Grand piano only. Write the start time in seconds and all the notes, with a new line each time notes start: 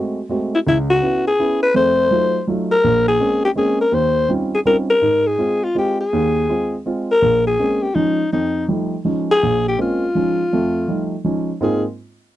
Already playing: G#3 A3 C4 F#4
0.29 G#3 A3 C4 F#4
0.67 C#2
1.02 B3 C#4 E4
1.39 B3 C#4 E4
1.74 F2 A3
2.10 F#3 A3 D#4 F4
2.47 F#3 A3 D#4 F4
2.84 A#1
3.20 G#3 A#3 C4 C#4
3.55 G#3 A#3 C4 C#4
3.92 D#2
4.29 G3 C4 C#4 D#4 F4
4.65 G3 C4 C#4 D#4 F4
5.02 G#2
5.38 G#3 C4 F4
5.75 G#3 C4 F4
6.13 D#2
6.49 G#3 C4 F4
6.86 G#3 C4 F4
7.22 A#1
7.59 G#3 A#3 C4 C#4
7.95 F3 G#3 C#4 D#4
8.33 F2
8.68 F3 G3 A3 D#4
9.05 F3 G#3 C#4 D#4
9.43 A#1
9.78 G#3 A#3 C4 C#4
10.15 F3 G#3 C#4 D#4
10.53 F2 A3
10.88 F3 G3 A3 D#4
11.24 F3 G#3 C#4 D#4
11.61 G#2 G#3 A#3 C4 F4